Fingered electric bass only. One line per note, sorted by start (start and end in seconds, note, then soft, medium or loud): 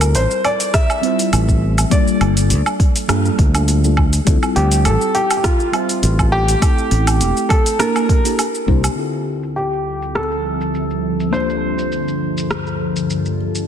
0.00 0.15 D2 medium
0.15 0.25 A1 medium
1.33 1.83 A1 medium
2.21 2.52 G1 medium
2.51 2.60 D2 medium
3.09 3.28 G2 medium
3.39 4.19 D2 medium
4.27 4.37 D2 medium
4.56 4.87 D2 medium
4.86 4.96 A1 medium
6.03 6.54 A1 medium
6.91 7.21 A1 medium
7.21 7.31 E1 medium
8.68 8.87 C2 medium